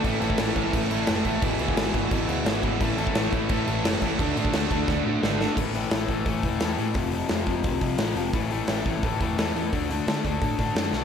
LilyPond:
<<
  \new Staff \with { instrumentName = "Distorted electric guitar" } { \clef bass \time 4/4 \key d \lydian \tempo 4 = 174 <a, e a>8 <a, e a>8 <a, e a>8 <a, e a>8 <a, e a>8 <a, e a>8 <a, e a>8 <a, e a>8 | <e, b, e>8 <e, b, e>8 <e, b, e>8 <e, b, e>8 <e, b, e>8 <e, b, e>8 <e, b, e>8 <e, b, e>8 | <a, e a>8 <a, e a>8 <a, e a>8 <a, e a>8 <a, e a>8 <a, e a>8 <a, e a>8 <a, e a>8 | <d a d'>8 <d a d'>8 <d a d'>8 <d a d'>8 <d a d'>8 <d a d'>8 <d a d'>8 <d a d'>8 |
<a, e a>8 <a, e a>8 <a, e a>8 <a, e a>8 <a, e a>8 <a, e a>8 <a, e a>8 <a, e a>8 | <f, c f>8 <f, c f>8 <f, c f>8 <f, c f>8 <f, c f>8 <f, c f>8 <f, c f>8 <f, c f>8 | <a, e a>8 <a, e a>8 <a, e a>8 <a, e a>8 <a, e a>8 <a, e a>8 <a, e a>8 <a, e a>8 | <d a d'>8 <d a d'>8 <d a d'>8 <d a d'>8 <d a d'>8 <d a d'>8 <d a d'>8 <d a d'>8 | }
  \new Staff \with { instrumentName = "Distorted electric guitar" } { \clef bass \time 4/4 \key d \lydian <a, e a>8 <a, e a>8 <a, e a>8 <a, e a>8 <a, e a>8 <a, e a>8 <a, e a>8 <a, e a>8 | <e, b, e>8 <e, b, e>8 <e, b, e>8 <e, b, e>8 <e, b, e>8 <e, b, e>8 <e, b, e>8 <e, b, e>8 | <a, e a>8 <a, e a>8 <a, e a>8 <a, e a>8 <a, e a>8 <a, e a>8 <a, e a>8 <a, e a>8 | <d a d'>8 <d a d'>8 <d a d'>8 <d a d'>8 <d a d'>8 <d a d'>8 <d a d'>8 <d a d'>8 |
r1 | r1 | r1 | r1 | }
  \new Staff \with { instrumentName = "Picked electric bass" } { \clef bass \time 4/4 \key d \lydian a,,8 a,,8 a,,8 a,,8 a,,8 a,,8 fis,,8 a,,8 | gis,,8 d,8 gis,,8 gis,,8 gis,,8 d,8 gis,,4 | a,,8 a,,8 a,,8 a,,8 a,,8 a,,8 fis,,8 a,,8 | d,8 a,8 d,8 d,8 d,8 a,8 gis,,4 |
a,,4 a,,8 a,,8 a,,8 e,,8 e,8 a,8 | f,,4 f,8 f,,8 c,8 c,8 a,,8 f,,8 | a,,4 a,,8 a,,8 a,,8 e,,8 e,8 e,8 | d,4 d8 d,8 a,8 a,8 fis,8 b,,8 | }
  \new DrumStaff \with { instrumentName = "Drums" } \drummode { \time 4/4 <cymc bd>8 cymc16 bd16 <cymc sn>8 <cymc bd>8 <cymc bd>8 cymc8 <cymc sn>8 <cymc bd>8 | <cymc bd>8 cymc16 bd16 <cymc sn>8 <cymc bd>8 <cymc bd>8 cymc8 <cymc sn>8 <cymc bd>8 | <cymc bd>8 cymc16 bd16 <cymc sn>8 <cymc bd>8 <cymc bd>8 cymc8 <cymc sn>8 <cymc bd>8 | <cymc bd>8 cymc16 bd16 <cymc sn>8 <cymc bd>8 <bd sn>4 sn8 sn8 |
<cymc bd>8 hho8 <hho sn>8 <hho bd>8 <hho bd>8 <hho bd>8 <hho sn>8 hho8 | <hho bd>8 hho8 <hho sn>8 <hho bd>8 <hho bd>8 <hho bd>8 <hho sn>8 hho8 | <hho bd>8 hho8 <hho sn>8 <hho bd>8 <hho bd>8 <hho bd>8 <hho sn>8 hho8 | <hho bd>8 hho8 <hho sn>8 <hho bd>8 <hho bd>8 <hho bd>8 <hho sn>8 sn8 | }
>>